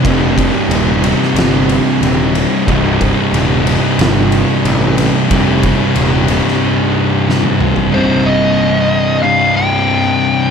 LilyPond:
<<
  \new Staff \with { instrumentName = "Lead electric guitar" } { \time 4/4 \key c \minor \tempo 4 = 91 r1 | r1 | r1 | c''8 ees''4. f''8 g''4. | }
  \new Staff \with { instrumentName = "Distorted electric guitar" } { \clef bass \time 4/4 \key c \minor <c, g, c g ees'>4. <c, g, c g ees'>2~ <c, g, c g ees'>8 | <c, g, c g ees'>4. <c, g, c g ees'>2~ <c, g, c g ees'>8 | <c, g, c g ees'>4. <c, g, c g ees'>2~ <c, g, c g ees'>8 | <c, g, c g ees'>1 | }
  \new Staff \with { instrumentName = "Distorted electric guitar" } { \clef bass \time 4/4 \key c \minor <c, g, c>1 | <c, g, c>1 | <c, g, c>1 | <c, g, c>2 <c, g, c>2 | }
  \new Staff \with { instrumentName = "Distorted electric guitar" } { \clef bass \time 4/4 \key c \minor <c, g, c>1 | <c, g, c>1 | <c, g, c>1 | <c, g, c>1 | }
  \new Staff \with { instrumentName = "Picked electric bass" } { \clef bass \time 4/4 \key c \minor f,,4 ees,,4 g,,4 ees,,4 | c,,4 ees,,4 g,,4 a,,4 | f,,4 ees,,4 r2 | r1 | }
  \new DrumStaff \with { instrumentName = "Drums" } \drummode { \time 4/4 <bd cymr>8 <bd cymr>8 cymr8 cymr16 sn16 <cymr sn>8 cymr8 cymr8 cymr8 | <bd cymr>8 <bd cymr>8 cymr8 cymr8 <cymr sn>8 cymr8 cymr8 cymr8 | <bd cymr>8 <bd cymr>8 cymr8 cymr16 sn16 r4 sn16 tommh16 toml16 tomfh16 | r4 r4 r4 r4 | }
>>